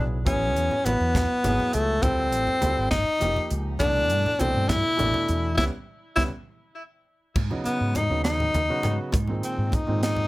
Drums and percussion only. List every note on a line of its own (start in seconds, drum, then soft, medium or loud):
0.27 kick loud
0.27 closed hi-hat medium
0.27 high conga medium
0.27 low conga medium
0.56 closed hi-hat medium
0.56 low conga soft
0.71 low conga medium
0.86 closed hi-hat medium
0.86 high conga medium
1.01 low conga soft
1.15 kick medium
1.15 snare loud
1.15 closed hi-hat medium
1.15 low conga medium
1.44 closed hi-hat medium
1.44 high conga loud
1.59 low conga medium
1.73 closed hi-hat medium
2.03 kick loud
2.03 closed hi-hat medium
2.03 high conga medium
2.03 low conga medium
2.32 closed hi-hat medium
2.32 low conga soft
2.47 low conga medium
2.62 closed hi-hat medium
2.62 high conga medium
2.78 low conga soft
2.91 kick medium
2.91 snare loud
2.91 closed hi-hat medium
2.91 low conga medium
3.21 closed hi-hat medium
3.21 high conga loud
3.37 low conga medium
3.51 closed hi-hat medium
3.51 low conga soft
3.80 kick loud
3.80 closed hi-hat medium
3.80 high conga medium
3.80 low conga medium
4.10 closed hi-hat medium
4.26 low conga medium
4.40 closed hi-hat medium
4.40 high conga medium
4.57 low conga soft
4.69 kick medium
4.69 snare loud
4.69 closed hi-hat medium
4.69 low conga loud
4.99 closed hi-hat medium
4.99 high conga loud
5.14 low conga medium
5.28 closed hi-hat medium
5.58 kick medium
5.58 snare medium
5.58 high conga medium
6.17 kick medium
6.17 snare medium
6.17 high conga medium
7.36 kick medium
7.36 crash medium
7.36 high conga medium
7.51 low conga medium
7.66 closed hi-hat medium
7.66 low conga soft
7.95 closed hi-hat medium
7.95 high conga medium
7.95 low conga medium
8.11 low conga soft
8.24 snare loud
8.24 closed hi-hat medium
8.40 low conga medium
8.54 closed hi-hat medium
8.54 high conga loud
8.83 closed hi-hat medium
8.83 low conga medium
9.12 kick loud
9.12 closed hi-hat medium
9.12 high conga medium
9.28 low conga medium
9.43 closed hi-hat medium
9.43 low conga soft
9.72 kick medium
9.72 closed hi-hat medium
9.72 low conga medium
9.87 low conga soft
10.03 snare loud
10.03 closed hi-hat medium
10.17 low conga medium